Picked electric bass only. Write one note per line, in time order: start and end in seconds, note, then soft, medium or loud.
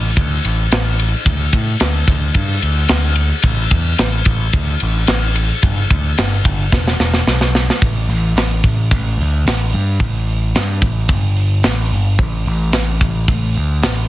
0.17 0.37 D2 medium
0.45 0.65 A1 medium
0.72 1.11 A1 loud
1.26 1.46 D2 loud
1.54 1.73 A2 medium
1.81 2.01 D2 medium
2.08 2.28 D2 medium
2.35 2.55 G2 loud
2.63 2.83 D2 medium
2.90 3.30 D2 medium
3.44 3.64 A1 medium
3.72 3.92 E2 medium
3.99 4.19 A1 medium
4.26 4.46 A1 loud
4.54 4.73 D2 medium
4.83 5.02 A1 medium
5.08 5.48 A1 loud
5.63 5.83 G1 medium
5.91 6.10 D2 medium
6.19 6.38 G1 medium
6.45 6.65 G1 medium
6.72 6.92 E1 medium
7.00 7.20 E1 loud
7.27 7.67 B1 medium
7.82 8.08 A1 medium
8.09 8.35 A1 medium
8.36 8.63 A1 medium
8.64 8.90 A1 medium
8.92 9.17 A1 loud
9.18 9.45 D2 loud
9.46 9.72 A1 medium
9.73 10.00 G2 medium
10.00 10.53 A1 medium
10.56 10.82 G2 medium
10.82 11.09 A1 medium
11.09 11.63 G1 medium
11.65 11.91 A1 medium
11.92 12.18 G1 medium
12.19 12.45 A1 loud
12.47 12.73 A1 medium
12.74 13.01 A1 medium
13.01 13.27 A1 loud
13.28 13.55 A1 loud
13.56 13.82 D2 medium
13.83 14.08 A1 loud